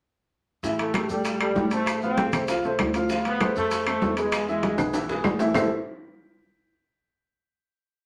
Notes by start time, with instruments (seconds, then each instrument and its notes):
0.63 upright bass A1, grand piano E3 E4 E5, high bongo, high conga, maracas
0.79 trombone section A3, high bongo, high conga, high timbale, maracas
0.94 grand piano G3 G4 A4, high bongo, high conga, high timbale, claves, maracas
1.09 upright bass A2, trombone section G3, grand piano G3 G4 A4, high conga, maracas
1.25 high bongo, high conga, high timbale, maracas
1.40 trombone section G3, grand piano G3 G4 A4, high bongo, high conga, high timbale, claves, maracas
1.56 upright bass A2, high bongo, low bongo, high conga, low timbale, maracas
1.71 grand piano A3 A4 C5, trombone section A3, high bongo, high conga, high timbale, maracas
1.86 high bongo, high conga, high timbale, claves, maracas
2.02 grand piano F3 F4 F5, trombone section C4, high bongo, high conga, maracas
2.17 high bongo, high conga, high timbale, maracas
2.32 upright bass C2, grand piano A3 A4 C5, high conga, low conga, high timbale, claves, maracas
2.48 grand piano F3 F4 F5, high bongo, high conga, high timbale, maracas
2.63 upright bass C2, grand piano A3 A4 C5, high bongo, high conga, maracas
2.79 upright bass D2, high bongo, low bongo, high conga, high timbale, low timbale, claves, maracas
2.94 grand piano F3 F4 F5, high bongo, high timbale, maracas
3.09 grand piano F3 F4 F5, high bongo, high conga, maracas
3.25 trombone section B3, high bongo, high conga, high timbale, maracas
3.40 grand piano A3 A4 C5, high bongo, high conga, high timbale, claves, maracas
3.56 upright bass F2, grand piano A3 A4 C5, trombone section A3, high conga, maracas
3.71 high bongo, high conga, high timbale, maracas
3.86 grand piano A3 A4 C5, trombone section A3, high bongo, high conga, high timbale, claves, maracas
4.01 upright bass E2, high bongo, low bongo, high conga, low timbale, maracas
4.17 grand piano G#3 G#4 B4, trombone section G#3, high bongo, high conga, high timbale, maracas
4.32 high bongo, high conga, high timbale, claves, maracas
4.48 grand piano E3 E4 E5, trombone section G#3, high bongo, high conga, maracas
4.63 high bongo, high conga, high timbale, maracas
4.78 upright bass B1, grand piano G#3 G#4 B4, high conga, low conga, high timbale, claves, maracas
4.93 grand piano E3 E4 E5, high bongo, high conga, high timbale, maracas
5.09 upright bass B1, grand piano G#3 G#4 B4, high bongo, high conga, maracas
5.24 upright bass A1, low bongo, high conga, low timbale, claves, maracas
5.39 grand piano E3 E4 E5, low bongo, low timbale, maracas
5.54 upright bass A1, grand piano A3 E4 G4 A4 C5 E5, trombone section A3, low bongo, low conga, low timbale, claves, maracas